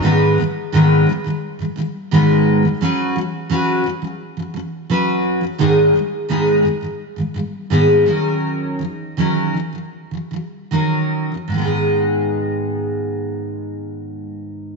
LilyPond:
\new Staff \with { instrumentName = "Steel-string acoustic guitar" } { \clef bass \time 4/4 \key gis \minor \tempo 4 = 85 <gis, dis gis b dis' b'>8 <gis, dis gis>8 <gis, dis gis b dis' b'>8 <gis, dis gis>16 <gis, dis gis>8 <gis, dis gis>16 <gis, dis gis>8 <gis, dis gis b dis' b'>8. <gis, dis gis>16 | <fis cis' fis' b'>8 <fis cis'>8 <fis cis' fis' b'>8 <fis cis'>16 <fis cis'>8 <fis cis'>16 <fis cis'>8 <fis cis' fis' b'>8. <fis cis'>16 | <gis, dis gis b dis' gis'>8 <gis, dis gis>8 <gis, dis gis b dis' gis'>8 <gis, dis gis>16 <gis, dis gis>8 <gis, dis gis>16 <gis, dis gis>8 <gis, dis gis b dis' gis'>8 <dis fis cis' dis' ais'>8~ | <dis fis cis' dis' ais'>8 <dis fis>8 <dis fis cis' dis' ais'>8 <dis fis>16 <dis fis>8 <dis fis>16 <dis fis>8 <dis fis cis' dis' ais'>8. <dis fis>16 |
<gis, dis gis b dis' gis'>1 | }